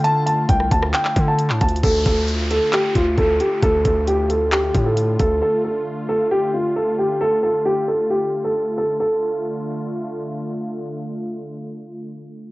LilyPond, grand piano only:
\new Staff \with { instrumentName = "Grand piano" } { \time 4/4 \key d \minor \tempo 4 = 134 a''8 a''8 g''8 a''8 g''8. a''8. a''8 | a'8 a'8 r8 a'8 g'8 f'8 a'8 g'8 | a'8 a'8 g'8 a'8 g'8. a'8. a'8 | a'8 a'8 r8 a'8 g'8 f'8 a'8 g'8 |
a'8 a'8 g'8 a'8 g'8. a'8. a'8 | a'2. r4 | r1 | }